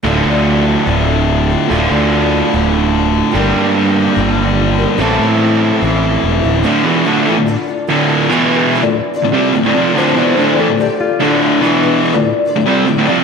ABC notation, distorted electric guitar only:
X:1
M:4/4
L:1/16
Q:1/4=145
K:Dm
V:1 name="Distorted electric guitar" clef=bass
[D,,A,,D,]16 | [D,,A,,D,]16 | [G,,D,G,]16 | [A,,E,A,]16 |
[D,,A,,D,]2 [E,,=B,,E,]2 [D,,A,,D,]2 [A,,E,] [D,,A,,]2 z3 [D,,A,,D,]4 | [E,,=B,,E,]4- [E,,B,,E,] [D,,A,,]2 z2 [D,,A,,] [C,G,C]2 [D,,A,,] [D,,A,,] [F,,C,F,]2 | [D,,A,,D,]2 [E,,=B,,E,]2 [D,,A,,D,]2 [A,,E,] [D,,A,,]2 z3 [D,,A,,D,]4 | [E,,=B,,E,]4- [E,,B,,E,] [D,,A,,]2 z2 [D,,A,,] [C,G,C]2 [D,,A,,] [D,,A,,] [F,,C,F,]2 |]